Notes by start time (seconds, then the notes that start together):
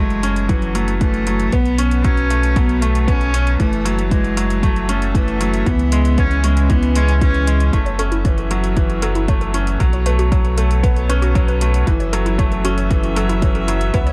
Already playing: F#1 F#3 G#3 A3 C#4 E4 A5
0.10 closed hi-hat
0.23 C#4, closed hi-hat
0.36 closed hi-hat
0.49 E3 F#3, kick, closed hi-hat
0.62 closed hi-hat
0.75 F#3 A3, closed hi-hat
0.88 closed hi-hat
1.01 E3 A3, kick, closed hi-hat
1.14 closed hi-hat
1.27 F#3, closed hi-hat
1.40 closed hi-hat
1.52 B1 B3 C#5, kick, closed hi-hat
1.65 closed hi-hat
1.78 C#4, closed hi-hat
1.91 closed hi-hat
2.04 F#3 C#4, kick, closed hi-hat
2.17 closed hi-hat
2.30 A3, closed hi-hat
2.43 closed hi-hat
2.56 F#3 B3, kick, closed hi-hat
2.69 closed hi-hat
2.82 A3, closed hi-hat
2.95 closed hi-hat
3.08 B3 C#4, kick, closed hi-hat
3.21 closed hi-hat
3.34 C#4, closed hi-hat
3.47 closed hi-hat
3.60 F#1 E3 F#3 A3 F#4 E5, kick, closed hi-hat
3.73 closed hi-hat
3.85 F#3, closed hi-hat
3.99 closed hi-hat
4.11 E3 G#3, kick, closed hi-hat
4.24 closed hi-hat
4.37 F#3, closed hi-hat
4.50 closed hi-hat
4.63 F#3 A3, kick, closed hi-hat
4.76 closed hi-hat
4.89 A3 C#4, closed hi-hat
5.02 closed hi-hat
5.15 E3 A3, kick, closed hi-hat
5.28 closed hi-hat
5.41 F#3, closed hi-hat
5.54 closed hi-hat
5.66 C#2 E3 B3 C#4 G#4 B4, kick, closed hi-hat
5.79 closed hi-hat
5.92 G#3, closed hi-hat
6.05 closed hi-hat
6.18 B3 C#4, kick, closed hi-hat
6.31 closed hi-hat
6.44 G#3 C#4, closed hi-hat
6.57 closed hi-hat
6.70 E3 B3, kick, closed hi-hat
6.83 closed hi-hat
6.95 G#3 C#4, closed hi-hat
7.08 closed hi-hat
7.21 E3 C#4, kick, closed hi-hat
7.34 closed hi-hat
7.47 G#3, closed hi-hat
7.60 closed hi-hat
7.73 F#1 F#3 A3 E4 F#4 A4 E5, kick, closed hi-hat
7.86 C#5, closed hi-hat
7.99 C#4 A4, closed hi-hat
8.12 E4, closed hi-hat
8.25 E3 C#5, kick, closed hi-hat
8.38 closed hi-hat
8.50 F#3 F#4, closed hi-hat
8.64 closed hi-hat
8.77 E3, kick, closed hi-hat
8.90 closed hi-hat
9.02 F#3 A4, closed hi-hat
9.15 E4, closed hi-hat
9.28 A3 C#5, kick, closed hi-hat
9.41 A4, closed hi-hat
9.54 C#4 E4, closed hi-hat
9.67 closed hi-hat
9.80 B1 F#3 B3 F#4 C#5, kick, closed hi-hat
9.93 C#5, closed hi-hat
10.06 A3 B4, closed hi-hat
10.19 F#4, closed hi-hat
10.32 F#3 C#5, kick, closed hi-hat
10.45 closed hi-hat
10.57 A3 A4, closed hi-hat
10.71 closed hi-hat
10.83 B3, kick, closed hi-hat
10.96 closed hi-hat
11.09 C#4 B4, closed hi-hat
11.22 F#4, closed hi-hat
11.35 F#3 C#5, kick, closed hi-hat
11.48 B4, closed hi-hat
11.61 A3 F#4, closed hi-hat
11.74 closed hi-hat
11.87 F#1 E3 F#3 C#4 E4 A4 E5, kick, closed hi-hat
12.00 C#5, closed hi-hat
12.13 F#3 A4, closed hi-hat
12.26 E4, closed hi-hat
12.38 A3 C#5, kick, closed hi-hat
12.52 closed hi-hat
12.64 C#4 F#4, closed hi-hat
12.78 closed hi-hat
12.91 E3, kick, closed hi-hat
13.03 closed hi-hat
13.16 F#3 A4, closed hi-hat
13.29 E4, closed hi-hat
13.42 E3 C#5, kick, closed hi-hat
13.55 A4, closed hi-hat
13.68 F#3 E4, closed hi-hat
13.81 closed hi-hat
13.94 C#2 C#3 B3 E4 B4, kick, closed hi-hat
14.07 C#5, closed hi-hat